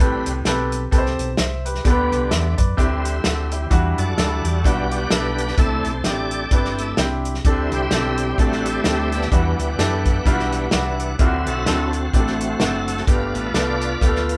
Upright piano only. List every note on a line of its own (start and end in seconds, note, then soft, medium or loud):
0.00 0.68 A2 medium
0.00 0.35 C4 medium
0.00 0.36 G4 medium
0.00 0.36 A4 medium
0.00 0.36 B4 medium
0.46 0.82 C4 medium
0.46 0.82 G4 medium
0.46 0.82 A4 medium
0.46 0.82 B4 medium
0.91 1.28 C4 medium
0.91 1.28 G4 medium
0.91 1.28 A4 medium
0.91 0.99 B4 medium
0.98 1.31 C5 medium
1.38 1.64 C5 medium
1.38 1.64 E5 medium
1.65 1.83 G4 medium
1.65 1.89 B4 medium
1.84 2.54 D3 medium
1.84 2.21 B3 medium
1.84 2.21 D4 medium
1.84 2.10 G4 medium
1.84 1.92 A4 medium
1.91 2.10 B4 medium
2.11 2.30 G4 medium
2.11 2.30 B4 medium
2.31 2.57 E5 medium
2.57 3.02 B4 soft
2.57 3.02 D5 medium
2.77 3.47 D3 medium
2.77 3.14 C4 medium
2.77 3.14 D4 medium
2.77 3.14 E4 medium
2.77 3.14 G4 medium
3.24 3.50 F#4 soft
3.24 3.50 A4 medium
3.51 3.70 E4 medium
3.51 3.96 G4 medium
3.70 4.40 E3 medium
3.70 4.07 G3 medium
3.70 4.07 D4 medium
3.70 4.07 E4 medium
3.70 4.08 F#4 medium
4.17 4.24 F#3 medium
4.17 4.54 D4 medium
4.17 4.54 E4 medium
4.17 4.54 A4 medium
4.23 4.57 G3 medium
4.65 5.01 G3 medium
4.65 5.01 D4 medium
4.65 5.01 E4 medium
4.65 5.01 F#4 medium
5.11 5.47 G3 medium
5.11 5.47 D4 medium
5.11 5.47 E4 medium
5.11 5.47 A4 medium
5.57 6.27 C3 medium
5.57 5.94 C4 medium
5.57 5.94 D4 medium
5.57 5.94 E4 medium
5.57 5.95 A4 medium
6.05 6.41 C4 medium
6.05 6.41 D4 medium
6.05 6.41 E4 medium
6.05 6.41 G4 medium
6.52 6.88 C4 medium
6.52 6.88 D4 medium
6.52 6.88 E4 medium
6.52 6.88 B4 medium
6.97 7.34 C4 medium
6.97 7.35 D4 medium
6.97 7.35 E4 medium
6.97 7.35 G4 medium
7.45 8.15 D3 medium
7.45 7.82 C4 medium
7.45 7.82 D4 medium
7.45 7.82 G4 medium
7.45 7.82 A4 medium
7.92 8.28 C4 medium
7.92 8.29 D4 medium
7.92 8.29 G4 medium
7.92 8.29 A4 medium
8.38 8.75 C4 medium
8.38 8.75 D4 medium
8.38 8.75 G4 medium
8.38 8.76 A4 medium
8.85 9.22 C4 medium
8.85 9.22 D4 medium
8.85 9.22 G4 medium
8.85 9.22 A4 medium
9.32 10.02 E3 medium
9.32 9.69 G3 medium
9.32 9.69 D4 medium
9.32 9.69 E4 medium
9.32 9.69 F#4 medium
9.79 10.16 D4 medium
9.79 10.16 E4 medium
9.79 10.16 G4 medium
9.79 10.16 A4 medium
10.26 10.62 G3 medium
10.26 10.63 D4 medium
10.26 10.63 E4 medium
10.26 10.33 F4 medium
10.32 10.66 F#4 medium
10.72 11.09 G3 medium
10.72 11.09 D4 medium
10.72 11.09 E4 medium
10.72 11.09 F#4 medium
11.19 11.89 D3 medium
11.19 11.56 C4 medium
11.19 11.56 D4 medium
11.19 11.56 E4 medium
11.19 11.26 F4 medium
11.25 11.59 F#4 medium
11.66 12.03 C4 medium
11.66 12.03 D4 medium
11.66 12.03 E4 medium
11.66 12.04 A4 medium
12.13 12.50 C4 medium
12.13 12.50 D4 medium
12.13 12.50 E4 medium
12.13 12.20 G4 medium
12.19 12.53 A4 medium
12.60 12.97 C4 medium
12.60 12.97 D4 medium
12.60 12.97 E4 medium
12.60 12.97 F#4 medium
13.07 13.77 G2 medium
13.07 13.44 A3 medium
13.07 13.44 B3 medium
13.07 13.44 F4 medium
13.07 13.44 G4 medium
13.54 13.91 A3 medium
13.54 13.91 B3 medium
13.54 13.91 F4 medium
13.54 13.91 A4 medium
14.01 14.37 A3 medium
14.01 14.37 B3 medium
14.01 14.37 F4 medium
14.01 14.08 G4 medium
14.08 14.37 A4 medium